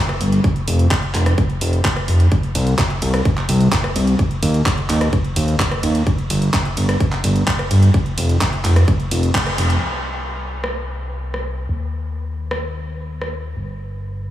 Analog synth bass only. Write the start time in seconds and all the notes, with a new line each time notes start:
0.21 G1
0.68 F1
1.15 F1
1.61 F1
2.08 F1
2.55 C2
3.02 C2
3.49 C2
3.96 C2
4.43 D#2
4.89 D#2
5.36 D#2
5.83 D#2
6.30 G1
6.77 G1
7.24 G1
7.71 G1
8.18 F1
8.64 F1
9.11 F1
9.58 F1
9.82 C2
11.69 D#2
13.57 G1